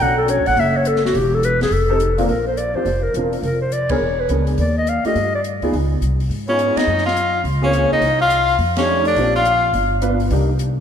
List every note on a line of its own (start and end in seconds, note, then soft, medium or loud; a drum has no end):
0.00 0.35 B1 medium
0.00 0.79 C#4 medium
0.00 0.79 D4 medium
0.00 0.79 F#4 medium
0.00 0.80 A4 medium
0.00 0.17 F#5 medium
0.18 0.31 A4 medium
0.28 0.48 C#5 medium
0.28 closed hi-hat medium
0.37 0.46 D2 medium
0.46 0.56 A1 medium
0.46 0.62 F#5 loud
0.46 open hi-hat soft
0.56 1.11 F#1 medium
0.56 0.78 E5 medium
0.56 open hi-hat soft
0.77 0.89 C#5 medium
0.85 1.04 A4 medium
0.85 closed hi-hat medium
0.96 snare soft
1.05 1.17 F#4 medium
1.05 snare soft
1.14 1.68 E1 medium
1.14 1.36 G4 medium
1.14 open hi-hat soft
1.35 1.46 A4 medium
1.43 1.62 B4 medium
1.43 closed hi-hat medium
1.61 1.75 G#4 medium
1.61 snare soft
1.61 open hi-hat soft
1.71 2.26 F1 medium
1.71 2.24 A4 medium
1.71 open hi-hat soft
1.89 1.99 C4 medium
1.89 1.99 D#4 medium
1.89 1.99 G4 medium
1.89 1.99 A4 medium
2.00 closed hi-hat medium
2.18 2.28 A#2 medium
2.18 2.28 C4 medium
2.18 2.28 D4 medium
2.18 2.28 F4 medium
2.18 2.28 A#4 medium
2.18 open hi-hat soft
2.28 2.72 A#1 medium
2.28 2.46 A#4 medium
2.28 open hi-hat soft
2.47 2.59 C5 medium
2.57 2.77 D5 medium
2.57 closed hi-hat soft
2.74 2.84 F2 medium
2.74 2.85 C4 medium
2.74 2.85 D4 soft
2.74 2.85 F4 soft
2.74 2.85 G4 medium
2.74 3.05 C5 medium
2.85 3.12 F1 medium
2.85 open hi-hat soft
3.03 3.15 A#4 medium
3.14 3.41 E1 medium
3.14 3.44 C4 soft
3.14 3.44 D4 soft
3.14 3.44 F4 soft
3.14 3.44 A#4 medium
3.14 closed hi-hat soft
3.33 open hi-hat soft
3.42 3.97 F1 medium
3.42 3.60 A#4 medium
3.42 open hi-hat soft
3.62 3.74 C5 medium
3.72 3.92 D5 medium
3.72 closed hi-hat soft
3.89 4.00 B3 medium
3.89 4.00 D4 medium
3.89 4.00 G#4 medium
3.89 4.00 A#4 medium
3.89 4.22 C#5 medium
3.89 kick medium
3.89 ride medium
4.00 4.27 E1 medium
4.20 4.30 B4 medium
4.29 4.56 C#2 medium
4.29 4.58 B3 soft
4.29 4.58 D4 soft
4.29 4.59 G#4 soft
4.29 4.59 A#4 soft
4.29 closed hi-hat soft
4.47 open hi-hat soft
4.58 5.01 D#2 medium
4.58 4.76 D5 medium
4.58 open hi-hat soft
4.78 4.91 D#5 medium
4.87 5.06 F5 medium
4.87 closed hi-hat soft
5.04 5.15 A3 medium
5.04 5.15 D4 soft
5.04 5.15 F4 medium
5.04 5.15 G4 medium
5.04 5.32 D#5 medium
5.04 muted upright bass stroke soft
5.04 open hi-hat soft
5.15 5.59 G2 medium
5.15 open hi-hat soft
5.35 5.41 D5 medium
5.44 closed hi-hat soft
5.62 5.72 D2 medium
5.62 5.72 B3 medium
5.62 5.72 D#4 medium
5.62 5.72 F4 medium
5.62 5.73 G#4 medium
5.62 open hi-hat soft
5.73 6.00 C#2 medium
5.73 open hi-hat soft
6.01 6.28 C2 medium
6.01 closed hi-hat soft
6.20 open hi-hat soft
6.29 6.73 G#2 medium
6.29 open hi-hat soft
6.47 6.85 B3 medium
6.47 6.80 C#4 medium
6.47 6.85 D#4 soft
6.47 6.86 F4 soft
6.47 6.86 G#4 medium
6.47 6.79 C#5 medium
6.59 closed hi-hat soft
6.76 7.05 D#4 medium
6.76 7.05 D#5 medium
6.76 muted upright bass stroke soft
6.76 snare medium
6.76 ride medium
6.87 7.42 F#2 medium
6.98 snare soft
7.06 7.42 F4 medium
7.06 7.42 F5 medium
7.06 snare soft
7.17 closed hi-hat soft
7.44 7.88 C#2 medium
7.44 open hi-hat soft
7.61 7.99 A#3 medium
7.61 7.99 C4 medium
7.61 7.90 C#4 medium
7.61 8.00 F4 medium
7.61 8.00 G#4 medium
7.61 7.90 C#5 medium
7.73 closed hi-hat soft
7.91 8.01 C#2 medium
7.91 8.19 D#4 medium
7.91 8.19 D#5 medium
8.01 8.56 C2 medium
8.01 open hi-hat soft
8.21 8.57 F4 medium
8.21 8.57 F5 loud
8.30 closed hi-hat soft
8.48 open hi-hat soft
8.58 9.13 F2 medium
8.58 open hi-hat soft
8.76 9.15 A3 medium
8.76 9.04 C#4 medium
8.76 9.15 D4 medium
8.76 9.15 D#4 medium
8.76 9.15 G4 medium
8.76 9.04 C#5 medium
8.76 snare medium
8.76 ride medium
9.05 9.33 D4 medium
9.05 9.33 D5 medium
9.05 open hi-hat soft
9.16 9.71 A#1 medium
9.16 9.33 C4 medium
9.16 9.33 D4 soft
9.16 9.33 F4 soft
9.16 9.33 G4 medium
9.16 open hi-hat soft
9.36 9.72 F4 medium
9.36 9.72 F5 medium
9.45 closed hi-hat soft
9.73 10.28 G1 medium
9.73 open hi-hat soft
10.02 10.18 B3 medium
10.02 10.18 D4 medium
10.02 10.18 F4 medium
10.02 10.18 B4 medium
10.02 closed hi-hat soft
10.20 open hi-hat soft
10.30 10.80 C2 medium
10.30 10.47 A#3 medium
10.30 10.47 D4 soft
10.30 10.47 D#4 soft
10.30 10.47 G4 medium
10.30 open hi-hat soft
10.59 closed hi-hat soft